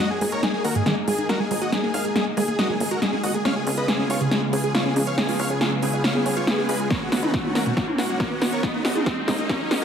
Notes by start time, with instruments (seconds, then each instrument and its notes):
0.00 analog synth pad G#3 A#3 D#4, riser
0.11 supersaw synth G#4
0.21 analog synth bass G#1, synth arpeggio sound G#3, supersaw synth G#4, open hi-hat
0.32 supersaw synth A#4 C#5, closed hi-hat
0.43 synth arpeggio sound D#4, supersaw synth G#4, snare, closed hi-hat
0.54 synth arpeggio sound G#3, supersaw synth G#4
0.64 analog synth bass D#2, supersaw synth F#4 A#4, open hi-hat
0.75 synth arpeggio sound G#2, supersaw synth G#4, closed hi-hat
0.86 synth arpeggio sound D#3, supersaw synth G#4, snare, closed hi-hat
1.07 analog synth bass G#1, synth arpeggio sound G#3, supersaw synth G#4, open hi-hat
1.18 synth arpeggio sound D#4, supersaw synth G#4, closed hi-hat
1.29 supersaw synth F#4 A#4, snare, closed hi-hat
1.40 synth arpeggio sound G#3, supersaw synth G#4
1.51 analog synth bass G#1, synth arpeggio sound G#3, supersaw synth G#4, open hi-hat
1.61 supersaw synth F#4 D#5, closed hi-hat
1.72 synth arpeggio sound G#3, supersaw synth G#4, snare, closed hi-hat
1.83 synth arpeggio sound A#3, supersaw synth G#4
1.94 analog synth bass G#1, supersaw synth G#4 F5, open hi-hat
2.05 supersaw synth G#4, synth arpeggio sound G#4, closed hi-hat
2.16 synth arpeggio sound A#3, supersaw synth G#4, snare, closed hi-hat
2.37 analog synth bass D#2, synth arpeggio sound G#3, supersaw synth G#4, open hi-hat
2.48 synth arpeggio sound A#3, supersaw synth G#4, closed hi-hat
2.59 supersaw synth F#4 D#5, snare, closed hi-hat
2.69 synth arpeggio sound F#3, supersaw synth G#4
2.80 analog synth bass G#1, synth arpeggio sound A#3, supersaw synth G#4, open hi-hat
2.91 supersaw synth F#4 A#4, closed hi-hat
3.02 synth arpeggio sound G#3, supersaw synth G#4, snare, closed hi-hat
3.13 synth arpeggio sound C#4, supersaw synth G#4
3.23 analog synth bass G#1, supersaw synth F#4 D#5, open hi-hat
3.34 synth arpeggio sound A#3, supersaw synth G#4, closed hi-hat
3.45 analog synth pad C#3 B3 F4, synth arpeggio sound C#4, supersaw synth C#5 F5, snare, closed hi-hat
3.56 supersaw synth G#4
3.67 analog synth bass C#2, synth arpeggio sound C#4, supersaw synth G#4, open hi-hat
3.77 supersaw synth B4 D#5, closed hi-hat
3.88 synth arpeggio sound G#4, supersaw synth G#4, snare, closed hi-hat
3.99 synth arpeggio sound C#4, supersaw synth G#4
4.10 analog synth bass G#1, supersaw synth F4 C#5, open hi-hat
4.21 synth arpeggio sound C#3, supersaw synth G#4, closed hi-hat
4.31 synth arpeggio sound G#3, supersaw synth G#4, snare, closed hi-hat
4.53 analog synth bass C#2, synth arpeggio sound C#4, supersaw synth G#4, open hi-hat
4.64 synth arpeggio sound G#4, supersaw synth G#4, closed hi-hat
4.75 supersaw synth F4 C#5, snare, closed hi-hat
4.85 synth arpeggio sound C#4, supersaw synth G#4
4.96 analog synth bass C#2, synth arpeggio sound C#4, supersaw synth G#4, open hi-hat
5.07 supersaw synth C#5 F5, closed hi-hat
5.18 synth arpeggio sound C#4, supersaw synth G#4, snare, closed hi-hat
5.28 synth arpeggio sound F4, supersaw synth G#4, open hi-hat
5.39 analog synth bass C#2, supersaw synth C#5 F5, open hi-hat
5.50 supersaw synth G#4, synth arpeggio sound C#5, closed hi-hat
5.61 synth arpeggio sound F4, supersaw synth G#4, snare, closed hi-hat
5.82 analog synth bass G#1, synth arpeggio sound C#4, supersaw synth G#4, open hi-hat
5.93 synth arpeggio sound D#4, supersaw synth G#4, closed hi-hat
6.04 supersaw synth C#5 F5, snare, closed hi-hat
6.15 synth arpeggio sound B3, supersaw synth G#4
6.26 analog synth bass G#1, supersaw synth G#4, synth arpeggio sound C#5, open hi-hat
6.37 supersaw synth F4 C#5, closed hi-hat
6.47 synth arpeggio sound F4, supersaw synth G#4, snare, closed hi-hat
6.58 synth arpeggio sound G#4, supersaw synth G#4
6.69 analog synth bass C#2, supersaw synth G#4 B4, open hi-hat
6.80 synth arpeggio sound F4, supersaw synth G#4, closed hi-hat
6.90 analog synth pad D#3 C#4, synth arpeggio sound B3, supersaw synth A#4 C#5, kick, snare, closed hi-hat
7.01 supersaw synth F#4
7.12 analog synth bass B1, synth arpeggio sound B3, supersaw synth F#4, snare, open hi-hat
7.23 supersaw synth D#4 B4, closed hi-hat, mid tom
7.34 supersaw synth F#4, synth arpeggio sound F#4, kick, snare, closed hi-hat
7.44 synth arpeggio sound B3, supersaw synth F#4, mid tom
7.55 analog synth bass F#1, supersaw synth F#4 A#4, snare, open hi-hat
7.66 synth arpeggio sound B2, supersaw synth F#4, closed hi-hat
7.77 synth arpeggio sound F#3, supersaw synth F#4, kick, snare, closed hi-hat
7.88 mid tom
7.98 analog synth bass B1, synth arpeggio sound B3, supersaw synth F#4, snare, open hi-hat
8.09 synth arpeggio sound F#4, supersaw synth F#4, closed hi-hat
8.20 supersaw synth F#4 A#4, kick, snare, closed hi-hat
8.31 synth arpeggio sound B3, supersaw synth F#4
8.41 analog synth bass B1, synth arpeggio sound B3, supersaw synth F#4, snare, open hi-hat
8.52 supersaw synth A#4 C#5, closed hi-hat
8.63 analog synth pad G#3 A#3 D#4, synth arpeggio sound G#3, supersaw synth D#4, kick, snare, closed hi-hat
8.74 synth arpeggio sound A#3, supersaw synth D#4
8.85 analog synth bass G#1, supersaw synth F#4 D#5, snare, open hi-hat
8.95 supersaw synth D#4, synth arpeggio sound G#4, closed hi-hat, mid tom
9.06 synth arpeggio sound A#3, kick, snare, closed hi-hat
9.28 analog synth bass D#2, synth arpeggio sound G#3, supersaw synth D#4, kick, snare, open hi-hat
9.38 synth arpeggio sound A#3, supersaw synth D#4, closed hi-hat
9.49 supersaw synth A#4 C#5, kick, snare, closed hi-hat
9.60 synth arpeggio sound F#3, supersaw synth D#4
9.71 analog synth bass G#1, synth arpeggio sound A#3, supersaw synth D#4, snare, open hi-hat